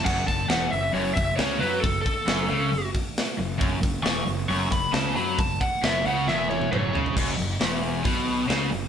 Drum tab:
CC |x---------------|----------------|----------------|----------------|
HH |--o-o-o-o-o-o-o-|o-o-o-o-o-o-o-o-|o-o-o-o-o-o-o-o-|o-o-o-o---------|
SD |----o-------o---|----o-------o---|----o-------o---|----o---o-------|
T1 |----------------|----------------|----------------|----------oo----|
T2 |----------------|----------------|----------------|------------o---|
FT |----------------|----------------|----------------|--------------oo|
BD |o-o-------o-----|o-o-------o-----|o-o-------o-----|o-o-------------|

CC |x---------------|
HH |--o-o-o-o-o-o-o-|
SD |----o-------o---|
T1 |----------------|
T2 |----------------|
FT |----------------|
BD |o-------o-------|